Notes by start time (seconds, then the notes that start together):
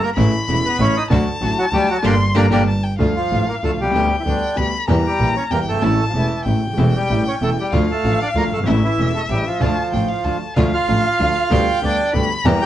Already playing: A#5
0.03 A#3 A#4
0.16 A1 A2 C#3 E3 A3 C#4 E4 B5
0.48 E1 E2 C#3 E3 A3 C#4 E4
0.66 B3 B4
0.79 A1 A2 C#3 E3 A3 C#4 E4 C#5
0.97 D#4 D#5
1.10 D2 D3 F#3 A3 D4 F#4 A5
1.41 A1 A2 D3 F#3 A3 D4 F#4
1.59 F#3 F#4
1.72 D2 D3 F#3 G3 A3 D4 F#4 G4
1.90 F#3 F#4
2.03 G1 A#2 D3 G3 A#3 D4 G4 C6
2.35 G1 A#2 D3 G3 A#3 D4 G4 A#5
2.50 G1 A#2 D3 G3 A#3 D4 G4
2.67 A5
2.83 G5
2.98 D2 D3 F3 A3 D4 F4 F5
3.16 F3 F4
3.31 A1 A2 D3 F3 A3 D4 F4
3.48 A#3 A#4
3.63 D2 D3 F3 A3 D4 F4 A4
3.79 B1 C2 G3 G4
3.87 C2 C#2
3.94 D2 D3 G3 B3 D4 G4 G5
4.19 E3 E4
4.25 D2 D3 G3 B3 D4 G4
4.56 D2 D3 G3 B3 D4 G4 B5
4.88 E2 E3 G3 A#3 E4 G4 A#5
5.06 G3 G4
5.18 A#1 A#2 E3 G3 A#3 E4 G4
5.37 C#4 C#5
5.50 E2 E3 G3 A#3 E4 G4 A#4 G5
5.67 F#1 G1 A3 A4
5.74 G1 G#1
5.82 A1 A2 C#3 E3 A3 C#4 E4 A5
6.09 F3 F4
6.13 E1 E2 C#3 E3 A3 C#4 E4
6.17 E4
6.45 A1 A2 C#3 E3 A3 C#4 E4 G5
6.66 C#1 D1
6.73 D#1 C#3 A3
6.78 E1 E2 E3 A3 C#4 E4
6.95 G3 G4
7.09 A1 A2 C#3 E3 A3 C#4 E4
7.28 C#4 C#5
7.41 E1 E2 C#3 E3 A3 C#4 E4 A4
7.60 G3 G4
7.73 D2 D3 F3 A3 D4 F4 F5
7.92 A3 A4
8.04 A1 A2 D3 F3 A3 D4 F4
8.22 D4 D5
8.35 D2 D3 F3 A3 A#3 D4 F4 A#4
8.50 G1 A3 A4
8.55 F#1 G1
8.63 G#1 A1 A3 C#4 E4 E5
8.67 A1 A2 C#3 E3 A3 E4
8.84 E3 E4
8.98 E1 E2 C#3 E3 A3 C#4 E4
9.15 A3 A4
9.29 A1 A2 C#3 E3 G3 A3 C#4 E4 G4
9.47 F3 F4
9.60 D2 D3 F3 A3 D4 F4 A5
9.92 A1 A2 D3 F3 A3 D4 F4 G5
10.08 F5
10.24 D2 D3 F3 A3 D4 F4 A5
10.57 D2 D3 F3 A3 D4 F4 F5
10.74 F4 F5
10.88 A1 A2 D3 F3 A3 D4 F4
11.19 D2 D3 F3 A3 D4 F4
11.50 D2 D3 G3 B3 D4 G4 G5
11.81 D2 D3 G3 B3 D4 G4 D5
11.85 D4
12.13 D2 D3 G3 B3 D4 G4 B5
12.45 E2 E3 G3 A#3 E4 G4 A#5
12.62 G4 G5